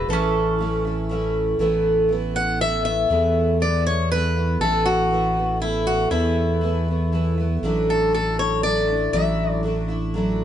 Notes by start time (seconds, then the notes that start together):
Already playing: B3
0.08 A1 A2 E3 A3 C#4 E4 A4
0.13 C#4
0.59 E3 A3 C#4 E4
0.85 A3 C#4 E4
1.09 E3 A3 C#4 E4
1.59 A1 A2 E3 A3 B3 E4
2.09 E3 A3 B3 E4
2.35 A3 B3 E4 F#5
2.59 E3 A3 B3 E4 E5
2.85 B3 E4 E5
2.89 A3
3.10 E2 A2 E3 A3 B3 E4
3.60 E3 A3 B3 E4 D5
3.86 A3 B3 E4 C#5
4.12 E3 A3 B3 B4
4.16 E4
4.36 A3 B3 E4
4.59 A1 A2 E3 A4
4.63 A3 B3 E4
4.86 F#4
5.11 E3 A3 B3 E4
5.37 A3 B3 E4
5.60 E3 A3 B3 E4
5.87 F#4
6.10 E2 A2 E3 A3 B3 E4
6.61 E3 A3 B3 E4
6.88 A3 B3 E4
7.12 E3 A3 B3 E4
7.38 A3 B3 E4
7.62 A1 A2 F#3 A3 D4 E4
7.90 A4
8.13 F#3 A3 D4 E4 A4
8.39 C#5
8.63 F#3 A3 D4 E4 D5
8.88 A3 D4 E4
9.13 A1 A2 F#3 A3 D4 E4 E5
9.63 F#3 A3 D4
9.67 E4
9.88 A3 D4 E4
10.14 F#3 A3 D4 E4